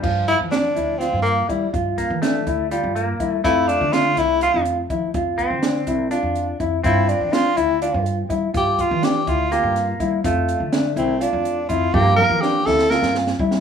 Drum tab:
CC |x-------------|--------------|--------------|--------------|
HH |--x-x-x-x-x-x-|x-x-x-x-x-x-x-|x-x-x-x-x-x-x-|x-x-x-x-x-x-x-|
SD |----o---o-----|--o-o---------|--o-o---------|----o---o-----|
T1 |--------------|--------------|--------------|--------------|
BD |o-----------o-|o-o---o-----o-|o-----------o-|o-o---o-----o-|

CC |--------------|--------------|--------------|--------------|
HH |x-x-x-x-x-x-x-|x-x-x-x-x-x-x-|x-x-x-x-x-x-x-|--------------|
SD |----o---------|----o---o-o---|----o---------|----o-oooooo-o|
T1 |--------------|--------------|--------------|o-o-----------|
BD |o-----------o-|o-o---o-----o-|o-----------o-|o-----------o-|